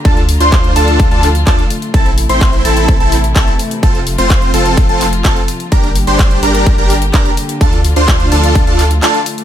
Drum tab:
HH |xxoxxxoxxxoxxxox|xxoxxxoxxxoxxxox|xxoxxxoxxxoxxxox|xxoxxxoxxxoxxxox|
CP |----x-----x-x---|----x-------x---|----x-----x-x---|----x-------x---|
BD |o---o---o---o---|o---o---o---o---|o---o---o---o---|o---o---o---o---|

HH |xxoxxxoxxxoxxxox|
CP |----x-----x-x---|
BD |o---o---o-------|